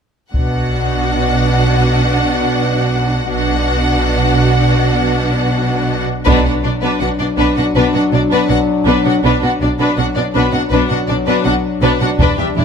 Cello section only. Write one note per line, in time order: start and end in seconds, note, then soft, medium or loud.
0.34 3.26 B2 soft
3.30 6.03 B2 soft
6.27 6.44 B2 medium
6.45 6.52 B2 soft
6.63 6.71 B2 soft
6.82 6.89 B2 soft
7.01 7.08 B2 soft
7.20 7.27 B2 soft
7.38 7.46 B2 soft
7.57 7.64 B2 soft
7.76 7.83 B2 soft
7.94 8.01 B2 soft
8.13 8.20 B2 soft
8.31 8.39 B2 soft
8.49 8.57 B2 soft
8.87 8.94 B2 soft
9.05 9.13 B2 soft
9.24 9.31 B2 medium
9.42 9.49 B2 soft
9.60 9.68 B2 soft
9.78 9.86 B2 soft
9.97 10.05 B2 soft
10.16 10.23 B2 soft
10.35 10.42 B2 medium
10.52 10.60 B2 soft
10.71 10.79 B2 soft
10.90 10.97 B2 soft
11.09 11.16 B2 soft
11.26 11.34 B2 medium
11.45 11.53 B2 soft
11.82 11.89 B2 soft
12.01 12.08 B2 soft
12.19 12.27 E2 medium
12.37 12.45 E2 soft
12.55 12.63 E2 soft